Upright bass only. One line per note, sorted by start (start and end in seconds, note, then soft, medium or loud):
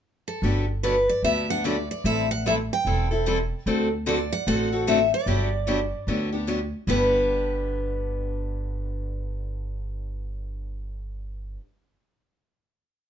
0.42 1.07 G1 medium
1.22 1.87 D2 medium
2.04 2.69 A1 medium
2.85 3.49 E1 medium
3.66 4.30 D2 medium
4.47 5.11 A1 medium
5.26 5.91 G1 medium
6.07 6.71 D2 medium
6.87 11.55 G1 medium